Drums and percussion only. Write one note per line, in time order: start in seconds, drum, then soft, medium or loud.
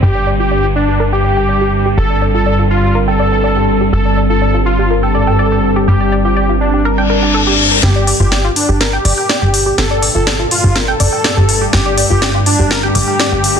7.83 snare soft
8.07 open hi-hat loud
8.32 snare soft
8.56 open hi-hat loud
8.81 snare soft
9.05 open hi-hat loud
9.29 snare soft
9.54 open hi-hat loud
9.78 snare medium
10.03 open hi-hat loud
10.27 snare medium
10.51 open hi-hat loud
10.76 snare medium
11.00 open hi-hat loud
11.24 snare medium
11.49 open hi-hat loud
11.73 snare medium
11.98 open hi-hat loud
12.22 snare medium
12.46 open hi-hat loud
12.71 snare medium
12.95 open hi-hat loud
13.20 snare medium
13.44 open hi-hat loud